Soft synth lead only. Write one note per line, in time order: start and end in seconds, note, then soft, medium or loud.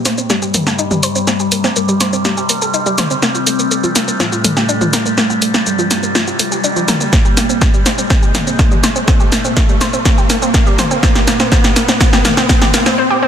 0.00 0.31 A#3 loud
0.30 1.66 G3 loud
1.76 2.40 G3 loud
3.22 4.10 C4 loud
4.20 5.57 A3 loud
5.66 6.30 G3 loud
7.13 8.01 A#3 loud
8.10 8.98 A#3 loud
10.05 10.93 A#3 loud
11.03 11.50 A#3 loud
11.52 11.99 A#3 loud
12.00 12.47 A#3 loud
12.49 12.96 A#3 loud